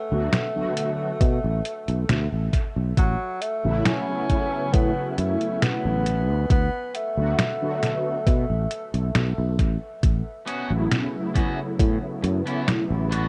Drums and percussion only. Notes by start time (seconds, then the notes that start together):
0.33 snare, closed hi-hat
0.77 closed hi-hat
1.21 kick, closed hi-hat
1.65 closed hi-hat
1.88 closed hi-hat
2.09 snare, closed hi-hat
2.53 kick, closed hi-hat
2.97 kick, closed hi-hat
3.42 closed hi-hat
3.85 snare, closed hi-hat
4.30 kick, closed hi-hat
4.74 kick, closed hi-hat
5.18 closed hi-hat
5.41 closed hi-hat
5.62 snare, closed hi-hat
6.06 closed hi-hat
6.50 kick, closed hi-hat
6.95 closed hi-hat
7.39 snare, closed hi-hat
7.83 snare, closed hi-hat
8.27 kick, closed hi-hat
8.71 closed hi-hat
8.94 closed hi-hat
9.15 snare, closed hi-hat
9.59 kick, closed hi-hat
10.03 kick, closed hi-hat
10.47 closed hi-hat
10.91 snare, closed hi-hat
11.35 kick, closed hi-hat
11.79 kick, closed hi-hat
12.24 closed hi-hat
12.47 closed hi-hat
12.68 snare, closed hi-hat
13.12 closed hi-hat